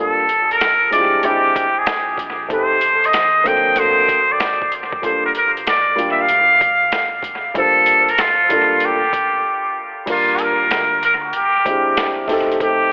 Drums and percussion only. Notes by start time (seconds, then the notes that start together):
0.29 closed hi-hat
0.51 closed hi-hat
0.61 snare, closed hi-hat
0.93 closed hi-hat
1.23 closed hi-hat
1.56 kick, closed hi-hat
1.87 snare, closed hi-hat
2.18 kick, closed hi-hat
2.50 kick, closed hi-hat
2.81 closed hi-hat
3.04 closed hi-hat
3.13 snare, closed hi-hat
3.46 kick, closed hi-hat
3.76 closed hi-hat
4.09 kick, closed hi-hat
4.40 snare, closed hi-hat
4.62 kick
4.72 closed hi-hat
4.92 kick
5.03 kick, closed hi-hat
5.35 closed hi-hat
5.57 closed hi-hat
5.67 snare, closed hi-hat
5.99 closed hi-hat
6.29 closed hi-hat
6.61 kick, closed hi-hat
6.92 snare, closed hi-hat
7.23 kick, closed hi-hat
7.55 kick, closed hi-hat
7.86 closed hi-hat
8.08 closed hi-hat
8.18 snare, closed hi-hat
8.50 kick, closed hi-hat
8.80 closed hi-hat
9.13 kick, closed hi-hat
10.07 kick, closed hi-hat, crash
10.38 closed hi-hat
10.71 snare, closed hi-hat
11.03 closed hi-hat
11.33 closed hi-hat
11.66 kick, closed hi-hat
11.97 snare, closed hi-hat
12.28 kick, open hi-hat
12.52 closed hi-hat
12.60 kick, closed hi-hat